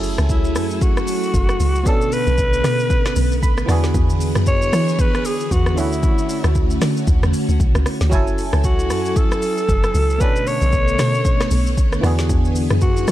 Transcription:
Already playing: log drum bass F#1, fm electric piano F#3 C#4 E4 G#4 A4, string machine F#3 A3 E4 G#5
0.04 open hi-hat, shaker
0.18 log drum bass C#2, cross-stick, shaker
0.29 alto saxophone E4, kick, shaker
0.45 shaker
0.55 log drum bass F#2, cross-stick, open hi-hat, shaker
0.71 shaker
0.82 alto saxophone F#4, kick, shaker
0.97 cross-stick, shaker
1.07 open hi-hat, shaker
1.23 shaker
1.34 log drum bass F#1, kick, shaker
1.49 cross-stick, shaker
1.60 log drum bass C#2, open hi-hat, shaker
1.75 shaker
1.83 fm electric piano B2 B3 C#4, string machine D3 A3 B3, alto saxophone A4, kick, shaker
1.87 fm electric piano D4 A4
2.01 shaker
2.12 alto saxophone B4, open hi-hat, shaker
2.27 log drum bass B1, shaker
2.38 kick, shaker
2.53 shaker
2.64 log drum bass B2, cross-stick, snare, open hi-hat, shaker
2.79 shaker
2.90 kick, shaker
3.05 cross-stick, snare, shaker
3.16 log drum bass B1, open hi-hat, shaker
3.32 shaker
3.43 fm electric piano B5, kick, shaker
3.58 cross-stick, shaker
3.66 log drum bass E2, fm electric piano E3 B3 D4, string machine E3 B3 G#4, cross-stick, open hi-hat, shaker
3.70 fm electric piano F#4 G#4
3.84 snare, shaker
3.94 log drum bass E2, kick, shaker
4.10 shaker
4.21 open hi-hat, shaker
4.35 log drum bass F#2, cross-stick, shaker
4.46 alto saxophone C#5, kick, shaker
4.62 shaker
4.73 log drum bass E3, cross-stick, open hi-hat, shaker
4.88 shaker
4.99 alto saxophone B4, kick, shaker
5.15 cross-stick, shaker
5.25 alto saxophone G#4, open hi-hat, shaker
5.40 shaker
5.51 log drum bass E2, alto saxophone F#4, kick, shaker
5.66 cross-stick, shaker
5.75 log drum bass D2, fm electric piano D3 A3 C#4, string machine D3 A3 C#4 F#4, alto saxophone E4, open hi-hat, shaker
5.79 fm electric piano E4 F#4
5.92 shaker
6.03 kick, shaker
6.18 shaker
6.29 open hi-hat, shaker
6.44 log drum bass D2, cross-stick, shaker
6.55 kick, shaker
6.71 shaker
6.81 log drum bass D3, cross-stick, snare, open hi-hat, shaker
6.97 shaker
7.07 log drum bass D2, kick, shaker
7.23 log drum bass E2, cross-stick, shaker
7.33 open hi-hat, shaker
7.49 log drum bass D2, shaker
7.60 log drum bass B1, kick, shaker
7.75 log drum bass C#2, cross-stick, shaker
7.86 cross-stick, open hi-hat, shaker
8.01 log drum bass D2, snare, shaker
8.09 log drum bass F#1, fm electric piano F#3 C#4 E4, string machine F#3 E4 A4 G#5, kick, shaker
8.14 fm electric piano A4 G#5
8.27 shaker
8.38 open hi-hat, shaker
8.53 log drum bass C#2, cross-stick, shaker
8.64 alto saxophone F#4, kick, shaker
8.79 shaker
8.90 log drum bass F#2, cross-stick, open hi-hat, shaker
9.05 shaker
9.16 alto saxophone A4, kick, shaker
9.32 cross-stick, shaker
9.42 open hi-hat, shaker
9.58 shaker
9.69 log drum bass F#1, kick, shaker
9.84 cross-stick, shaker
9.94 log drum bass C#2, open hi-hat, shaker
10.10 shaker
10.18 fm electric piano B2 B3 C#4, string machine D3 A3 B3, alto saxophone B4, kick, shaker
10.22 fm electric piano D4 A4
10.36 shaker
10.47 alto saxophone C#5, open hi-hat, shaker
10.62 log drum bass B1, shaker
10.73 kick, shaker
10.88 shaker
10.99 log drum bass B2, cross-stick, snare, open hi-hat, shaker
11.14 shaker
11.25 kick, shaker
11.40 cross-stick, snare, shaker
11.51 log drum bass B1, open hi-hat, shaker
11.67 shaker
11.78 kick, shaker
11.93 cross-stick, shaker
12.01 log drum bass E2, fm electric piano E3 B3 D4, string machine E3 G#4, cross-stick, open hi-hat, shaker
12.05 fm electric piano F#4 G#4
12.19 snare, shaker
12.30 log drum bass E2, kick, shaker
12.45 shaker
12.56 open hi-hat, shaker
12.70 log drum bass F#2, cross-stick, shaker
12.81 alto saxophone F#4, kick, shaker
12.97 shaker
13.08 log drum bass E3, cross-stick, open hi-hat, shaker

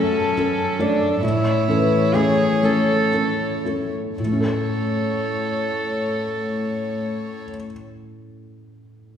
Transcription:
Already playing: cello section F#2, felt piano F#2 A3 C#4 A4, harp F#2 A3 G#5, cello C#4, violin section A4
0.37 felt piano C#4 A4, harp A4
0.79 felt piano A3 A4 C#5, harp A3, cello D4
1.22 harp A2, felt piano A2, cello section A2, cello E4, violin section C#5
1.67 harp E3, felt piano C#4 A4
2.14 harp A3, felt piano A3 C#4 C#5, cello G#4
2.62 felt piano A3 C#4 A4, harp C#4, cello A4
3.12 felt piano C#4 A4, harp A4
3.65 harp A3, felt piano A3 C#4 A4
4.18 harp A2, cello section A2, felt piano A2, cello A4, violin section C#5
4.25 harp A3, felt piano A3
4.32 harp C#4, felt piano C#4
4.39 harp A4, felt piano A4
4.46 harp C#5, felt piano C#5

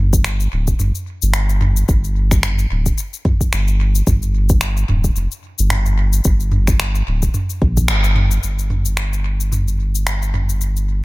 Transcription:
Already playing: sub bass G1
0.13 kick, cabasa
0.24 finger snap, cabasa
0.40 cabasa
0.52 sub bass D1
0.67 kick, cabasa
0.79 sub bass G1, mid tom, cabasa
0.95 cabasa
1.22 sub bass G1, cabasa
1.34 finger snap, cabasa
1.49 cabasa
1.61 mid tom
1.77 cabasa
1.89 sub bass G1, kick, cabasa
2.04 cabasa
2.31 finger snap, kick, cabasa
2.43 finger snap, mid tom, cabasa
2.59 cabasa
2.71 sub bass D1
2.86 kick, cabasa
2.98 cabasa
3.13 cabasa
3.25 kick, mid tom
3.41 kick, cabasa
3.53 sub bass G1, finger snap, cabasa
3.68 cabasa
3.95 cabasa
4.07 sub bass G1, kick, mid tom, cabasa
4.22 cabasa
4.49 kick, cabasa
4.61 finger snap, cabasa
4.77 cabasa
4.89 sub bass D1, mid tom
5.04 kick, cabasa
5.16 sub bass F1, cabasa
5.32 cabasa
5.58 sub bass G1, cabasa
5.70 finger snap, mid tom, cabasa
5.86 cabasa
6.13 cabasa
6.24 sub bass G1, kick, cabasa
6.40 cabasa
6.52 mid tom
6.67 finger snap, kick, cabasa
6.80 finger snap, cabasa
6.95 cabasa
7.07 sub bass D1
7.22 kick, cabasa
7.34 mid tom, cabasa
7.50 cabasa
7.62 sub bass A#1, kick
7.77 kick, cabasa
7.88 sub bass G1, finger snap, cabasa
8.04 cabasa
8.16 mid tom
8.31 cabasa
8.43 sub bass G1, cabasa
8.59 cabasa
8.70 mid tom
8.85 cabasa
8.97 finger snap, cabasa
9.13 cabasa
9.40 cabasa
9.52 mid tom, cabasa
9.68 cabasa
9.95 cabasa
10.07 finger snap, cabasa
10.22 cabasa
10.34 mid tom
10.49 cabasa
10.61 cabasa
10.77 cabasa

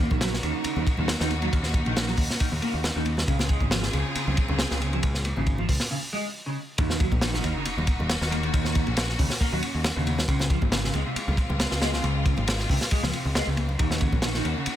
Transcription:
Already playing: string section C#3 A#3 D#4 F#4
0.11 picked electric bass A#1, clean electric guitar D#3, kick, muted conga, high conga, low conga
0.21 clean electric guitar F#3, snare, ride
0.32 snare, muted conga
0.43 picked electric bass D#2, clean electric guitar D#3, ride
0.64 muted picked electric bass stroke, ride, muted conga
0.76 picked electric bass D#2, high conga, low conga
0.86 kick, ride, muted conga
0.97 picked electric bass D#2, clean electric guitar D#3, low conga
1.08 snare, ride
1.20 picked electric bass D#2, clean electric guitar D#3, snare, muted conga
1.31 ride, high conga
1.42 clean electric guitar F#3, ride, muted conga
1.53 picked electric bass D#2, kick, ride
1.63 snare
1.74 kick, ride, muted conga
1.85 picked electric bass A#1, clean electric guitar D#3, ride, high conga
1.96 snare, ride, muted conga
2.08 clean electric guitar F#3, snare
2.17 picked electric bass D#2, kick, open hi-hat
2.30 snare, muted conga
2.40 clean electric guitar D#3, kick, ride
2.52 picked electric bass D#2, muted conga, high conga
2.62 clean electric guitar A#3, ride
2.74 picked electric bass D#2
2.84 snare, ride, muted conga
2.96 picked electric bass D#2, clean electric guitar D#3
3.05 ride, muted conga, high conga
3.17 snare, low conga
3.28 picked electric bass C#2, string section C#3 C4 F4 G#4, clean electric guitar C#3, kick, ride
3.39 snare, muted conga
3.49 clean electric guitar G#3, kick, ride
3.60 picked electric bass G#1, clean electric guitar C#3, kick, muted conga, high conga, low conga
3.71 clean electric guitar F3, snare, ride
3.83 snare
3.93 picked electric bass C#2, clean electric guitar C#3, ride, muted conga
4.15 muted picked electric bass stroke, ride, muted conga
4.27 picked electric bass C#2, high conga, low conga
4.37 kick, ride
4.48 picked electric bass C#2, clean electric guitar C#3, muted conga, low conga
4.59 snare, ride
4.71 picked electric bass C#2, clean electric guitar C#3, snare, muted conga
4.80 ride, high conga
4.93 clean electric guitar F3, ride
5.03 picked electric bass C#2, kick, ride, muted conga
5.14 snare
5.25 ride, muted conga
5.36 picked electric bass G#1, clean electric guitar C#3, high conga, low conga
5.46 kick, ride
5.58 clean electric guitar F3, muted conga
5.69 picked electric bass C#2, kick, open hi-hat
5.80 snare, muted conga
5.91 clean electric guitar C#3
6.13 clean electric guitar G#3
6.46 clean electric guitar C#3
6.78 picked electric bass D#2, clean electric guitar D#3, string section A#3 D#4 F#4, kick, ride, sub drop, muted conga
6.90 snare
7.00 clean electric guitar F#3, kick, ride
7.12 picked electric bass A#1, kick, muted conga, high conga, low conga
7.21 clean electric guitar D#3, snare, ride
7.34 clean electric guitar D#3, snare, muted conga
7.44 picked electric bass D#2, clean electric guitar A#3, ride
7.55 clean electric guitar C#3
7.65 muted picked electric bass stroke, ride, muted conga
7.77 picked electric bass D#2, high conga, low conga
7.87 kick, ride, muted conga
7.99 picked electric bass D#2, low conga
8.09 snare, ride
8.21 picked electric bass D#2, snare, muted conga
8.31 clean electric guitar A#3, ride, high conga
8.43 clean electric guitar D#3, ride, muted conga
8.53 picked electric bass D#2, string section C#4, kick, ride
8.65 snare
8.75 kick, ride, muted conga
8.86 picked electric bass A#1, ride, high conga
8.97 snare, ride, muted conga
9.09 snare
9.19 picked electric bass D#2, clean electric guitar C#3, kick, open hi-hat
9.30 snare, muted conga
9.41 clean electric guitar A#3, kick, ride
9.52 picked electric bass D#2, clean electric guitar F#3, muted conga, high conga
9.63 ride
9.74 picked electric bass D#2
9.84 snare, ride, muted conga
9.96 picked electric bass D#2, clean electric guitar C#3
10.06 clean electric guitar C#3, ride, muted conga, high conga
10.18 snare, low conga
10.28 picked electric bass C#2, clean electric guitar C#3, string section G#3 C4 F4, kick, ride
10.40 snare, muted conga
10.50 clean electric guitar F3, kick, ride
10.62 picked electric bass G#1, kick, muted conga, high conga, low conga
10.72 clean electric guitar C#3, snare, ride
10.84 clean electric guitar C#3, snare
10.94 picked electric bass C#2, clean electric guitar G#3, ride, muted conga
11.06 clean electric guitar C3
11.16 muted picked electric bass stroke, ride, muted conga
11.28 picked electric bass C#2, high conga, low conga
11.37 kick, ride
11.49 picked electric bass C#2, muted conga, low conga
11.60 snare, ride
11.71 picked electric bass C#2, snare, muted conga
11.82 clean electric guitar G#3, snare, ride, high conga
11.93 clean electric guitar C#3, snare
12.04 picked electric bass C#2, ride, muted conga
12.26 kick, ride, muted conga
12.37 picked electric bass G#1, ride, high conga, low conga
12.48 snare, ride
12.59 snare, muted conga
12.70 picked electric bass C#2, clean electric guitar C3, kick, open hi-hat
12.80 snare, muted conga
12.91 clean electric guitar G#3, kick, ride
13.03 picked electric bass C#2, clean electric guitar F3, snare, high conga
13.13 clean electric guitar C3, ride, muted conga
13.25 picked electric bass C#2
13.35 clean electric guitar G#3, snare, ride, muted conga
13.47 picked electric bass C#2, clean electric guitar C#3
13.57 ride, high conga
13.69 muted conga, low conga
13.79 picked electric bass D#2, string section D#3 A#3 C#4 F#4, clean electric guitar D#3, kick, ride, muted conga
13.91 snare
14.01 clean electric guitar C#3, kick, ride
14.12 picked electric bass A#1, kick, muted conga, high conga, low conga
14.22 clean electric guitar D#3, snare, ride
14.34 clean electric guitar D#3, snare, muted conga
14.44 picked electric bass D#2, clean electric guitar A#3, ride
14.56 clean electric guitar C#3
14.66 muted picked electric bass stroke, ride, muted conga

